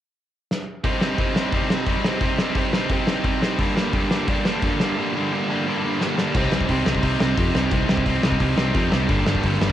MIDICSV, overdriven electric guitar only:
0, 0, Header, 1, 2, 480
1, 0, Start_track
1, 0, Key_signature, -3, "minor"
1, 0, Tempo, 344234
1, 1174, Time_signature, 4, 2, 24, 8
1, 13556, End_track
2, 0, Start_track
2, 0, Title_t, "Overdriven electric guitar"
2, 0, Program_c, 0, 29
2, 1169, Note_on_c, 0, 48, 84
2, 1184, Note_on_c, 0, 55, 94
2, 1187, Note_on_c, 0, 60, 102
2, 1187, Note_on_c, 0, 63, 91
2, 1417, Note_off_c, 0, 63, 0
2, 1422, Note_off_c, 0, 60, 0
2, 1423, Note_on_c, 0, 63, 82
2, 1428, Note_on_c, 0, 60, 82
2, 1434, Note_off_c, 0, 55, 0
2, 1436, Note_off_c, 0, 48, 0
2, 1440, Note_on_c, 0, 55, 77
2, 1442, Note_on_c, 0, 48, 73
2, 1654, Note_off_c, 0, 48, 0
2, 1659, Note_off_c, 0, 55, 0
2, 1659, Note_on_c, 0, 48, 84
2, 1662, Note_off_c, 0, 60, 0
2, 1665, Note_off_c, 0, 63, 0
2, 1665, Note_on_c, 0, 55, 77
2, 1668, Note_on_c, 0, 60, 79
2, 1671, Note_on_c, 0, 63, 84
2, 1885, Note_off_c, 0, 63, 0
2, 1889, Note_off_c, 0, 60, 0
2, 1891, Note_on_c, 0, 63, 84
2, 1894, Note_on_c, 0, 60, 84
2, 1901, Note_off_c, 0, 55, 0
2, 1904, Note_off_c, 0, 48, 0
2, 1907, Note_on_c, 0, 55, 73
2, 1910, Note_on_c, 0, 48, 64
2, 2119, Note_off_c, 0, 48, 0
2, 2127, Note_off_c, 0, 60, 0
2, 2134, Note_off_c, 0, 63, 0
2, 2136, Note_on_c, 0, 48, 79
2, 2140, Note_off_c, 0, 55, 0
2, 2144, Note_on_c, 0, 60, 87
2, 2145, Note_on_c, 0, 55, 88
2, 2151, Note_on_c, 0, 63, 88
2, 2354, Note_off_c, 0, 63, 0
2, 2356, Note_off_c, 0, 60, 0
2, 2365, Note_off_c, 0, 48, 0
2, 2371, Note_on_c, 0, 63, 88
2, 2372, Note_on_c, 0, 60, 78
2, 2375, Note_off_c, 0, 55, 0
2, 2381, Note_on_c, 0, 55, 78
2, 2382, Note_on_c, 0, 48, 72
2, 2585, Note_off_c, 0, 48, 0
2, 2599, Note_off_c, 0, 60, 0
2, 2601, Note_on_c, 0, 48, 79
2, 2604, Note_off_c, 0, 55, 0
2, 2606, Note_off_c, 0, 63, 0
2, 2610, Note_on_c, 0, 55, 81
2, 2616, Note_on_c, 0, 60, 86
2, 2623, Note_on_c, 0, 63, 81
2, 2831, Note_off_c, 0, 63, 0
2, 2833, Note_off_c, 0, 60, 0
2, 2846, Note_off_c, 0, 48, 0
2, 2848, Note_on_c, 0, 63, 84
2, 2850, Note_on_c, 0, 60, 76
2, 2857, Note_off_c, 0, 55, 0
2, 2862, Note_on_c, 0, 55, 74
2, 2863, Note_on_c, 0, 48, 66
2, 3056, Note_off_c, 0, 48, 0
2, 3063, Note_off_c, 0, 60, 0
2, 3073, Note_off_c, 0, 63, 0
2, 3073, Note_on_c, 0, 48, 88
2, 3075, Note_off_c, 0, 55, 0
2, 3080, Note_on_c, 0, 60, 104
2, 3081, Note_on_c, 0, 55, 83
2, 3089, Note_on_c, 0, 63, 100
2, 3312, Note_off_c, 0, 63, 0
2, 3316, Note_off_c, 0, 60, 0
2, 3325, Note_off_c, 0, 48, 0
2, 3328, Note_on_c, 0, 63, 83
2, 3331, Note_off_c, 0, 55, 0
2, 3332, Note_on_c, 0, 60, 75
2, 3336, Note_on_c, 0, 55, 71
2, 3342, Note_on_c, 0, 48, 69
2, 3548, Note_off_c, 0, 48, 0
2, 3561, Note_off_c, 0, 63, 0
2, 3564, Note_off_c, 0, 60, 0
2, 3565, Note_on_c, 0, 48, 80
2, 3569, Note_off_c, 0, 55, 0
2, 3575, Note_on_c, 0, 55, 80
2, 3578, Note_on_c, 0, 63, 97
2, 3580, Note_on_c, 0, 60, 88
2, 3780, Note_off_c, 0, 63, 0
2, 3783, Note_off_c, 0, 60, 0
2, 3793, Note_off_c, 0, 48, 0
2, 3796, Note_on_c, 0, 63, 83
2, 3800, Note_on_c, 0, 60, 86
2, 3803, Note_off_c, 0, 55, 0
2, 3809, Note_on_c, 0, 48, 70
2, 3809, Note_on_c, 0, 55, 74
2, 4033, Note_off_c, 0, 48, 0
2, 4048, Note_off_c, 0, 60, 0
2, 4050, Note_on_c, 0, 48, 90
2, 4052, Note_off_c, 0, 63, 0
2, 4055, Note_off_c, 0, 55, 0
2, 4060, Note_on_c, 0, 55, 87
2, 4065, Note_on_c, 0, 60, 85
2, 4069, Note_on_c, 0, 63, 93
2, 4280, Note_off_c, 0, 63, 0
2, 4282, Note_off_c, 0, 60, 0
2, 4297, Note_on_c, 0, 63, 85
2, 4299, Note_on_c, 0, 60, 81
2, 4301, Note_off_c, 0, 48, 0
2, 4302, Note_off_c, 0, 55, 0
2, 4307, Note_on_c, 0, 55, 80
2, 4317, Note_on_c, 0, 48, 69
2, 4514, Note_off_c, 0, 48, 0
2, 4525, Note_off_c, 0, 60, 0
2, 4527, Note_off_c, 0, 63, 0
2, 4530, Note_off_c, 0, 55, 0
2, 4530, Note_on_c, 0, 48, 86
2, 4535, Note_on_c, 0, 55, 83
2, 4542, Note_on_c, 0, 60, 87
2, 4544, Note_on_c, 0, 63, 88
2, 4743, Note_off_c, 0, 60, 0
2, 4746, Note_off_c, 0, 63, 0
2, 4760, Note_on_c, 0, 60, 71
2, 4762, Note_off_c, 0, 48, 0
2, 4763, Note_on_c, 0, 63, 75
2, 4765, Note_off_c, 0, 55, 0
2, 4770, Note_on_c, 0, 55, 72
2, 4779, Note_on_c, 0, 48, 74
2, 4993, Note_off_c, 0, 60, 0
2, 4995, Note_off_c, 0, 63, 0
2, 5003, Note_off_c, 0, 48, 0
2, 5016, Note_off_c, 0, 55, 0
2, 5020, Note_on_c, 0, 43, 86
2, 5020, Note_on_c, 0, 50, 86
2, 5021, Note_on_c, 0, 55, 91
2, 5030, Note_on_c, 0, 58, 98
2, 5035, Note_on_c, 0, 62, 99
2, 5249, Note_off_c, 0, 62, 0
2, 5250, Note_off_c, 0, 50, 0
2, 5252, Note_off_c, 0, 58, 0
2, 5254, Note_on_c, 0, 62, 80
2, 5258, Note_on_c, 0, 58, 87
2, 5259, Note_off_c, 0, 55, 0
2, 5264, Note_off_c, 0, 43, 0
2, 5265, Note_on_c, 0, 55, 78
2, 5267, Note_on_c, 0, 50, 75
2, 5270, Note_on_c, 0, 43, 64
2, 5484, Note_off_c, 0, 50, 0
2, 5486, Note_off_c, 0, 43, 0
2, 5491, Note_on_c, 0, 43, 83
2, 5498, Note_off_c, 0, 55, 0
2, 5501, Note_off_c, 0, 58, 0
2, 5501, Note_on_c, 0, 50, 82
2, 5504, Note_on_c, 0, 55, 85
2, 5505, Note_off_c, 0, 62, 0
2, 5506, Note_on_c, 0, 58, 91
2, 5511, Note_on_c, 0, 62, 90
2, 5730, Note_off_c, 0, 62, 0
2, 5733, Note_off_c, 0, 50, 0
2, 5733, Note_off_c, 0, 58, 0
2, 5736, Note_on_c, 0, 62, 95
2, 5737, Note_off_c, 0, 55, 0
2, 5739, Note_on_c, 0, 58, 89
2, 5742, Note_on_c, 0, 55, 86
2, 5746, Note_off_c, 0, 43, 0
2, 5750, Note_on_c, 0, 50, 76
2, 5751, Note_on_c, 0, 43, 71
2, 5942, Note_off_c, 0, 43, 0
2, 5955, Note_off_c, 0, 50, 0
2, 5959, Note_on_c, 0, 43, 84
2, 5966, Note_off_c, 0, 58, 0
2, 5966, Note_off_c, 0, 62, 0
2, 5967, Note_off_c, 0, 55, 0
2, 5972, Note_on_c, 0, 50, 89
2, 5973, Note_on_c, 0, 55, 83
2, 5983, Note_on_c, 0, 58, 85
2, 5983, Note_on_c, 0, 62, 96
2, 6204, Note_off_c, 0, 62, 0
2, 6213, Note_off_c, 0, 58, 0
2, 6216, Note_off_c, 0, 50, 0
2, 6221, Note_on_c, 0, 62, 85
2, 6224, Note_off_c, 0, 55, 0
2, 6226, Note_off_c, 0, 43, 0
2, 6229, Note_on_c, 0, 58, 80
2, 6230, Note_on_c, 0, 55, 79
2, 6232, Note_on_c, 0, 50, 78
2, 6243, Note_on_c, 0, 43, 71
2, 6446, Note_off_c, 0, 43, 0
2, 6452, Note_off_c, 0, 50, 0
2, 6463, Note_off_c, 0, 58, 0
2, 6463, Note_on_c, 0, 43, 83
2, 6469, Note_off_c, 0, 55, 0
2, 6469, Note_on_c, 0, 50, 79
2, 6470, Note_off_c, 0, 62, 0
2, 6474, Note_on_c, 0, 55, 84
2, 6479, Note_on_c, 0, 58, 92
2, 6487, Note_on_c, 0, 62, 97
2, 6681, Note_off_c, 0, 62, 0
2, 6688, Note_off_c, 0, 58, 0
2, 6695, Note_off_c, 0, 50, 0
2, 6696, Note_off_c, 0, 55, 0
2, 6698, Note_on_c, 0, 62, 84
2, 6702, Note_on_c, 0, 55, 74
2, 6704, Note_off_c, 0, 43, 0
2, 6705, Note_on_c, 0, 58, 87
2, 6711, Note_on_c, 0, 50, 70
2, 6721, Note_on_c, 0, 43, 69
2, 6912, Note_off_c, 0, 43, 0
2, 6918, Note_off_c, 0, 50, 0
2, 6920, Note_off_c, 0, 55, 0
2, 6927, Note_off_c, 0, 58, 0
2, 6928, Note_on_c, 0, 43, 90
2, 6931, Note_off_c, 0, 62, 0
2, 6935, Note_on_c, 0, 50, 99
2, 6936, Note_on_c, 0, 55, 95
2, 6944, Note_on_c, 0, 58, 95
2, 6948, Note_on_c, 0, 62, 101
2, 7168, Note_off_c, 0, 62, 0
2, 7175, Note_off_c, 0, 58, 0
2, 7183, Note_off_c, 0, 55, 0
2, 7185, Note_on_c, 0, 62, 79
2, 7187, Note_off_c, 0, 50, 0
2, 7190, Note_off_c, 0, 43, 0
2, 7192, Note_on_c, 0, 58, 82
2, 7199, Note_on_c, 0, 55, 78
2, 7204, Note_on_c, 0, 50, 75
2, 7206, Note_on_c, 0, 43, 70
2, 7391, Note_off_c, 0, 43, 0
2, 7398, Note_off_c, 0, 50, 0
2, 7404, Note_off_c, 0, 55, 0
2, 7407, Note_on_c, 0, 43, 79
2, 7410, Note_off_c, 0, 58, 0
2, 7413, Note_off_c, 0, 62, 0
2, 7415, Note_on_c, 0, 50, 81
2, 7421, Note_on_c, 0, 55, 87
2, 7427, Note_on_c, 0, 58, 89
2, 7429, Note_on_c, 0, 62, 80
2, 7643, Note_off_c, 0, 62, 0
2, 7649, Note_off_c, 0, 58, 0
2, 7658, Note_off_c, 0, 50, 0
2, 7659, Note_off_c, 0, 55, 0
2, 7660, Note_on_c, 0, 62, 84
2, 7664, Note_off_c, 0, 43, 0
2, 7666, Note_on_c, 0, 58, 84
2, 7675, Note_on_c, 0, 50, 78
2, 7676, Note_on_c, 0, 55, 80
2, 7681, Note_on_c, 0, 43, 71
2, 7890, Note_off_c, 0, 43, 0
2, 7901, Note_off_c, 0, 50, 0
2, 7904, Note_off_c, 0, 55, 0
2, 7904, Note_off_c, 0, 58, 0
2, 7907, Note_on_c, 0, 43, 85
2, 7914, Note_off_c, 0, 62, 0
2, 7918, Note_on_c, 0, 50, 84
2, 7921, Note_on_c, 0, 55, 84
2, 7921, Note_on_c, 0, 58, 90
2, 7931, Note_on_c, 0, 62, 100
2, 8116, Note_off_c, 0, 62, 0
2, 8121, Note_off_c, 0, 58, 0
2, 8130, Note_off_c, 0, 50, 0
2, 8131, Note_off_c, 0, 55, 0
2, 8132, Note_on_c, 0, 62, 82
2, 8138, Note_on_c, 0, 58, 82
2, 8140, Note_off_c, 0, 43, 0
2, 8147, Note_on_c, 0, 50, 73
2, 8148, Note_on_c, 0, 55, 79
2, 8157, Note_on_c, 0, 43, 70
2, 8355, Note_off_c, 0, 43, 0
2, 8362, Note_off_c, 0, 50, 0
2, 8368, Note_off_c, 0, 58, 0
2, 8371, Note_off_c, 0, 55, 0
2, 8372, Note_on_c, 0, 43, 78
2, 8374, Note_off_c, 0, 62, 0
2, 8379, Note_on_c, 0, 50, 78
2, 8385, Note_on_c, 0, 58, 82
2, 8387, Note_on_c, 0, 55, 81
2, 8391, Note_on_c, 0, 62, 84
2, 8598, Note_off_c, 0, 62, 0
2, 8600, Note_off_c, 0, 58, 0
2, 8608, Note_off_c, 0, 55, 0
2, 8615, Note_off_c, 0, 50, 0
2, 8615, Note_on_c, 0, 62, 82
2, 8617, Note_on_c, 0, 58, 77
2, 8624, Note_off_c, 0, 43, 0
2, 8624, Note_on_c, 0, 55, 77
2, 8632, Note_on_c, 0, 50, 69
2, 8641, Note_on_c, 0, 43, 62
2, 8840, Note_off_c, 0, 62, 0
2, 8841, Note_off_c, 0, 58, 0
2, 8845, Note_off_c, 0, 55, 0
2, 8849, Note_off_c, 0, 50, 0
2, 8853, Note_off_c, 0, 43, 0
2, 8863, Note_on_c, 0, 48, 92
2, 8868, Note_on_c, 0, 55, 85
2, 8870, Note_on_c, 0, 60, 98
2, 8881, Note_on_c, 0, 63, 98
2, 9099, Note_off_c, 0, 63, 0
2, 9104, Note_on_c, 0, 63, 87
2, 9106, Note_off_c, 0, 55, 0
2, 9107, Note_off_c, 0, 60, 0
2, 9111, Note_on_c, 0, 55, 81
2, 9113, Note_on_c, 0, 60, 77
2, 9118, Note_off_c, 0, 48, 0
2, 9123, Note_on_c, 0, 48, 69
2, 9345, Note_off_c, 0, 48, 0
2, 9349, Note_off_c, 0, 55, 0
2, 9350, Note_on_c, 0, 48, 80
2, 9355, Note_off_c, 0, 60, 0
2, 9355, Note_on_c, 0, 55, 80
2, 9357, Note_off_c, 0, 63, 0
2, 9361, Note_on_c, 0, 60, 97
2, 9362, Note_on_c, 0, 63, 83
2, 9578, Note_off_c, 0, 60, 0
2, 9582, Note_off_c, 0, 63, 0
2, 9583, Note_on_c, 0, 60, 80
2, 9588, Note_on_c, 0, 63, 91
2, 9589, Note_off_c, 0, 55, 0
2, 9593, Note_off_c, 0, 48, 0
2, 9595, Note_on_c, 0, 55, 81
2, 9598, Note_on_c, 0, 48, 76
2, 9801, Note_off_c, 0, 48, 0
2, 9811, Note_off_c, 0, 60, 0
2, 9818, Note_on_c, 0, 48, 82
2, 9819, Note_off_c, 0, 55, 0
2, 9821, Note_off_c, 0, 63, 0
2, 9825, Note_on_c, 0, 55, 84
2, 9828, Note_on_c, 0, 60, 87
2, 9837, Note_on_c, 0, 63, 98
2, 10030, Note_off_c, 0, 63, 0
2, 10040, Note_off_c, 0, 60, 0
2, 10046, Note_on_c, 0, 63, 88
2, 10051, Note_off_c, 0, 48, 0
2, 10056, Note_off_c, 0, 55, 0
2, 10057, Note_on_c, 0, 60, 84
2, 10062, Note_on_c, 0, 55, 76
2, 10068, Note_on_c, 0, 48, 81
2, 10265, Note_off_c, 0, 48, 0
2, 10277, Note_off_c, 0, 60, 0
2, 10282, Note_on_c, 0, 48, 80
2, 10283, Note_off_c, 0, 63, 0
2, 10286, Note_off_c, 0, 55, 0
2, 10292, Note_on_c, 0, 55, 86
2, 10293, Note_on_c, 0, 60, 88
2, 10300, Note_on_c, 0, 63, 94
2, 10493, Note_off_c, 0, 63, 0
2, 10510, Note_on_c, 0, 63, 81
2, 10512, Note_off_c, 0, 60, 0
2, 10517, Note_off_c, 0, 48, 0
2, 10519, Note_off_c, 0, 55, 0
2, 10525, Note_on_c, 0, 55, 75
2, 10528, Note_on_c, 0, 60, 73
2, 10534, Note_on_c, 0, 48, 71
2, 10729, Note_off_c, 0, 48, 0
2, 10741, Note_off_c, 0, 60, 0
2, 10743, Note_off_c, 0, 55, 0
2, 10746, Note_on_c, 0, 48, 94
2, 10748, Note_off_c, 0, 63, 0
2, 10748, Note_on_c, 0, 55, 97
2, 10758, Note_on_c, 0, 60, 107
2, 10765, Note_on_c, 0, 63, 108
2, 10968, Note_off_c, 0, 63, 0
2, 10974, Note_off_c, 0, 60, 0
2, 10985, Note_on_c, 0, 63, 83
2, 10987, Note_off_c, 0, 48, 0
2, 10990, Note_off_c, 0, 55, 0
2, 10991, Note_on_c, 0, 60, 80
2, 10996, Note_on_c, 0, 55, 77
2, 11004, Note_on_c, 0, 48, 74
2, 11221, Note_off_c, 0, 48, 0
2, 11227, Note_off_c, 0, 60, 0
2, 11233, Note_off_c, 0, 55, 0
2, 11234, Note_off_c, 0, 63, 0
2, 11238, Note_on_c, 0, 48, 86
2, 11238, Note_on_c, 0, 55, 85
2, 11244, Note_on_c, 0, 60, 92
2, 11251, Note_on_c, 0, 63, 90
2, 11453, Note_off_c, 0, 63, 0
2, 11460, Note_off_c, 0, 60, 0
2, 11470, Note_on_c, 0, 63, 90
2, 11473, Note_off_c, 0, 48, 0
2, 11476, Note_on_c, 0, 60, 79
2, 11478, Note_off_c, 0, 55, 0
2, 11483, Note_on_c, 0, 55, 74
2, 11489, Note_on_c, 0, 48, 71
2, 11687, Note_off_c, 0, 48, 0
2, 11699, Note_off_c, 0, 60, 0
2, 11703, Note_off_c, 0, 55, 0
2, 11704, Note_off_c, 0, 63, 0
2, 11704, Note_on_c, 0, 48, 89
2, 11709, Note_on_c, 0, 55, 100
2, 11715, Note_on_c, 0, 60, 90
2, 11721, Note_on_c, 0, 63, 91
2, 11928, Note_off_c, 0, 63, 0
2, 11936, Note_off_c, 0, 60, 0
2, 11945, Note_off_c, 0, 48, 0
2, 11945, Note_on_c, 0, 63, 94
2, 11953, Note_on_c, 0, 60, 84
2, 11956, Note_off_c, 0, 55, 0
2, 11961, Note_on_c, 0, 48, 74
2, 11962, Note_on_c, 0, 55, 78
2, 12174, Note_off_c, 0, 48, 0
2, 12182, Note_off_c, 0, 60, 0
2, 12187, Note_off_c, 0, 55, 0
2, 12191, Note_off_c, 0, 63, 0
2, 12191, Note_on_c, 0, 48, 90
2, 12193, Note_on_c, 0, 55, 95
2, 12198, Note_on_c, 0, 60, 83
2, 12207, Note_on_c, 0, 63, 95
2, 12421, Note_off_c, 0, 60, 0
2, 12425, Note_off_c, 0, 63, 0
2, 12436, Note_off_c, 0, 48, 0
2, 12438, Note_on_c, 0, 60, 80
2, 12441, Note_on_c, 0, 63, 89
2, 12445, Note_off_c, 0, 55, 0
2, 12450, Note_on_c, 0, 55, 81
2, 12453, Note_on_c, 0, 48, 73
2, 12670, Note_off_c, 0, 60, 0
2, 12672, Note_off_c, 0, 63, 0
2, 12674, Note_on_c, 0, 43, 89
2, 12678, Note_off_c, 0, 48, 0
2, 12679, Note_off_c, 0, 55, 0
2, 12684, Note_on_c, 0, 50, 90
2, 12684, Note_on_c, 0, 55, 103
2, 12695, Note_on_c, 0, 58, 96
2, 12698, Note_on_c, 0, 62, 105
2, 12916, Note_off_c, 0, 62, 0
2, 12920, Note_off_c, 0, 50, 0
2, 12922, Note_on_c, 0, 62, 89
2, 12926, Note_off_c, 0, 58, 0
2, 12931, Note_off_c, 0, 55, 0
2, 12932, Note_on_c, 0, 58, 85
2, 12935, Note_off_c, 0, 43, 0
2, 12936, Note_on_c, 0, 50, 69
2, 12937, Note_on_c, 0, 55, 83
2, 12941, Note_on_c, 0, 43, 74
2, 13158, Note_off_c, 0, 50, 0
2, 13165, Note_off_c, 0, 43, 0
2, 13170, Note_on_c, 0, 43, 93
2, 13175, Note_on_c, 0, 50, 87
2, 13178, Note_off_c, 0, 55, 0
2, 13180, Note_off_c, 0, 58, 0
2, 13182, Note_off_c, 0, 62, 0
2, 13183, Note_on_c, 0, 55, 94
2, 13186, Note_on_c, 0, 58, 98
2, 13188, Note_on_c, 0, 62, 99
2, 13401, Note_off_c, 0, 62, 0
2, 13405, Note_off_c, 0, 50, 0
2, 13406, Note_on_c, 0, 62, 87
2, 13407, Note_off_c, 0, 58, 0
2, 13412, Note_off_c, 0, 55, 0
2, 13413, Note_on_c, 0, 58, 81
2, 13418, Note_on_c, 0, 55, 85
2, 13422, Note_on_c, 0, 50, 76
2, 13424, Note_off_c, 0, 43, 0
2, 13430, Note_on_c, 0, 43, 71
2, 13556, Note_off_c, 0, 43, 0
2, 13556, Note_off_c, 0, 50, 0
2, 13556, Note_off_c, 0, 55, 0
2, 13556, Note_off_c, 0, 58, 0
2, 13556, Note_off_c, 0, 62, 0
2, 13556, End_track
0, 0, End_of_file